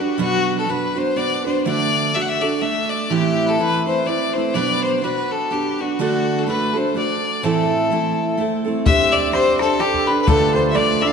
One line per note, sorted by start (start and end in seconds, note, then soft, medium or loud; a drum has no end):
0.00 0.18 D4 soft
0.00 0.19 F#4 medium
0.00 0.19 G4 soft
0.00 0.19 B4 soft
0.18 0.67 B2 medium
0.18 1.65 F#3 medium
0.18 0.66 B3 medium
0.18 0.68 D4 medium
0.18 0.69 F#4 medium
0.18 0.55 F#4 loud
0.18 0.69 B4 medium
0.59 0.71 A4 medium
0.67 0.95 B3 medium
0.67 0.95 D4 medium
0.67 0.94 F#4 medium
0.67 0.99 B4 medium
0.67 0.93 B4 medium
0.94 1.15 B3 soft
0.94 1.16 D4 soft
0.94 1.17 F#4 soft
0.94 1.16 B4 soft
0.94 1.18 C5 medium
1.16 1.44 B3 medium
1.16 1.45 D4 medium
1.16 1.44 F#4 medium
1.16 1.43 B4 medium
1.16 1.45 D5 loud
1.44 1.65 B3 soft
1.44 1.66 D4 soft
1.44 1.66 F#4 soft
1.44 1.65 B4 soft
1.44 1.65 C5 medium
1.65 2.14 D3 medium
1.65 2.13 A3 medium
1.65 2.14 D4 medium
1.65 2.15 F#4 medium
1.65 2.16 A4 medium
1.65 2.16 D5 loud
2.14 2.42 A3 medium
2.14 2.42 D4 medium
2.14 2.42 F#4 medium
2.14 2.40 A4 medium
2.14 2.23 E5 medium
2.22 2.30 F#5 medium
2.28 2.43 E5 medium
2.41 2.62 D4 soft
2.41 2.63 F#4 soft
2.41 2.62 A4 medium
2.41 2.63 D5 medium
2.61 3.10 A3 medium
2.61 3.11 D4 medium
2.61 3.11 F#4 medium
2.61 3.11 A4 medium
2.61 2.91 E5 medium
2.89 3.12 D5 medium
3.10 3.59 A2 medium
3.10 3.59 E3 medium
3.10 3.57 A3 medium
3.10 3.58 C4 medium
3.10 3.59 E4 medium
3.10 3.47 G4 medium
3.10 3.61 B4 medium
3.45 3.60 A4 medium
3.45 3.50 B4 medium
3.58 3.86 A3 medium
3.58 3.86 C4 medium
3.58 3.86 E4 medium
3.58 3.86 B4 medium
3.58 3.85 B4 medium
3.86 4.05 A3 soft
3.86 4.06 C4 soft
3.86 4.07 E4 soft
3.86 4.07 B4 soft
3.86 4.08 C5 medium
4.06 4.34 A3 medium
4.06 4.35 C4 medium
4.06 4.34 E4 medium
4.06 4.33 B4 medium
4.06 4.35 D5 medium
4.33 4.55 C4 soft
4.33 4.55 E4 soft
4.33 4.55 B4 soft
4.33 4.56 C5 medium
4.37 4.55 A3 soft
4.54 5.03 B2 medium
4.54 5.98 F#3 medium
4.54 5.01 B3 medium
4.54 5.03 D4 medium
4.54 5.04 F#4 medium
4.54 5.04 B4 medium
4.54 4.82 D5 loud
4.84 5.05 C5 medium
5.02 5.49 B3 medium
5.02 5.51 D4 medium
5.02 5.52 F#4 medium
5.02 5.33 B4 medium
5.02 5.52 B4 medium
5.32 5.54 A4 medium
5.51 5.78 B3 medium
5.51 5.79 D4 medium
5.51 5.79 F#4 medium
5.51 5.82 G4 medium
5.51 5.78 B4 medium
5.79 5.99 B3 soft
5.79 5.99 D4 soft
5.79 6.00 F#4 soft
5.79 6.00 F#4 medium
5.79 5.99 B4 soft
5.99 6.47 D3 medium
5.99 6.46 A3 medium
5.99 6.46 D4 medium
5.99 6.48 F#4 medium
5.99 6.40 F#4 medium
5.99 6.49 A4 medium
6.38 6.48 A4 medium
6.46 6.74 A3 medium
6.46 6.75 D4 medium
6.46 6.74 F#4 medium
6.46 6.72 A4 medium
6.46 6.78 B4 medium
6.73 6.94 D4 soft
6.73 6.95 F#4 soft
6.73 6.94 A4 soft
6.73 6.96 C5 medium
6.94 7.43 A3 soft
6.94 7.43 D4 medium
6.94 7.44 F#4 medium
6.94 7.44 A4 medium
6.94 7.46 D5 medium
7.43 7.91 A2 medium
7.43 7.91 E3 medium
7.43 7.89 A3 medium
7.43 7.91 C4 medium
7.43 7.91 E4 medium
7.43 8.39 A4 medium
7.43 7.92 A4 medium
7.90 8.36 A3 medium
7.90 8.37 C4 medium
7.90 8.38 E4 medium
7.90 8.40 A4 medium
8.37 8.65 A3 medium
8.37 8.65 C4 medium
8.37 8.64 E4 medium
8.37 8.63 A4 medium
8.65 8.86 A3 soft
8.65 8.85 C4 soft
8.65 8.86 E4 soft
8.65 8.85 A4 medium
8.86 9.31 C4 medium
8.86 9.33 D4 medium
8.86 9.33 G4 medium
8.86 9.34 C5 medium
8.86 9.14 E5 loud
8.86 11.02 E5 medium
8.86 bodhran medium
9.12 9.32 D5 medium
9.12 10.74 D5 medium
9.32 9.60 C4 medium
9.32 9.61 D4 medium
9.32 9.59 G4 medium
9.32 9.58 C5 loud
9.32 10.13 C5 medium
9.32 9.57 C5 medium
9.32 bodhran medium
9.59 9.79 D4 soft
9.59 9.80 G4 medium
9.59 10.27 A4 medium
9.59 9.82 A4 medium
9.59 9.80 C5 soft
9.59 bodhran medium
9.79 10.07 C4 medium
9.79 10.08 D4 medium
9.79 11.13 G4 medium
9.79 10.09 G4 medium
9.79 10.07 G4 medium
9.79 10.06 C5 medium
9.79 bodhran medium
9.94 bodhran soft
10.07 10.27 D4 soft
10.07 10.28 G4 soft
10.07 10.60 B4 medium
10.07 10.21 B4 medium
10.07 10.28 C5 soft
10.21 10.29 B4 medium
10.27 10.75 D3 medium
10.27 10.74 A3 medium
10.27 10.74 D4 medium
10.27 10.76 F4 medium
10.27 10.53 A4 loud
10.27 11.13 A4 medium
10.27 10.77 A4 medium
10.27 bodhran medium
10.54 10.69 C5 medium
10.54 11.13 C5 medium
10.70 10.77 E5 medium
10.74 11.02 A3 medium
10.74 11.03 D4 medium
10.74 11.02 F4 medium
10.74 11.01 A4 medium
10.74 11.13 D5 medium
10.74 11.03 D5 medium
10.74 bodhran medium
11.02 11.13 D4 soft
11.02 11.13 F4 soft
11.02 11.13 A4 soft
11.02 11.09 E5 medium
11.02 11.12 E5 medium
11.02 bodhran medium
11.07 11.13 F5 medium